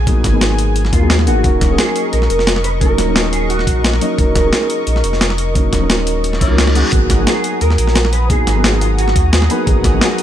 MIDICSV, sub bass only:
0, 0, Header, 1, 2, 480
1, 0, Start_track
1, 0, Key_signature, -6, "minor"
1, 0, Tempo, 342857
1, 99, Time_signature, 4, 2, 24, 8
1, 14318, End_track
2, 0, Start_track
2, 0, Title_t, "Sub bass"
2, 0, Program_c, 0, 38
2, 0, Note_on_c, 0, 34, 91
2, 321, Note_off_c, 0, 34, 0
2, 340, Note_on_c, 0, 32, 102
2, 1282, Note_off_c, 0, 32, 0
2, 1299, Note_on_c, 0, 39, 93
2, 1779, Note_on_c, 0, 32, 97
2, 1800, Note_off_c, 0, 39, 0
2, 1996, Note_off_c, 0, 32, 0
2, 2020, Note_on_c, 0, 27, 94
2, 2481, Note_off_c, 0, 27, 0
2, 2981, Note_on_c, 0, 34, 99
2, 3198, Note_off_c, 0, 34, 0
2, 3218, Note_on_c, 0, 29, 88
2, 4161, Note_off_c, 0, 29, 0
2, 4179, Note_on_c, 0, 27, 99
2, 5121, Note_off_c, 0, 27, 0
2, 5139, Note_on_c, 0, 34, 97
2, 5601, Note_off_c, 0, 34, 0
2, 5860, Note_on_c, 0, 27, 99
2, 6321, Note_off_c, 0, 27, 0
2, 6817, Note_on_c, 0, 34, 103
2, 7036, Note_off_c, 0, 34, 0
2, 7057, Note_on_c, 0, 29, 93
2, 8000, Note_off_c, 0, 29, 0
2, 8017, Note_on_c, 0, 27, 101
2, 8977, Note_on_c, 0, 37, 103
2, 8998, Note_off_c, 0, 27, 0
2, 9565, Note_off_c, 0, 37, 0
2, 9698, Note_on_c, 0, 32, 98
2, 10160, Note_off_c, 0, 32, 0
2, 10657, Note_on_c, 0, 39, 104
2, 10875, Note_off_c, 0, 39, 0
2, 10897, Note_on_c, 0, 34, 91
2, 11840, Note_off_c, 0, 34, 0
2, 11858, Note_on_c, 0, 32, 99
2, 12801, Note_off_c, 0, 32, 0
2, 12820, Note_on_c, 0, 39, 97
2, 13282, Note_off_c, 0, 39, 0
2, 13539, Note_on_c, 0, 32, 97
2, 14001, Note_off_c, 0, 32, 0
2, 14318, End_track
0, 0, End_of_file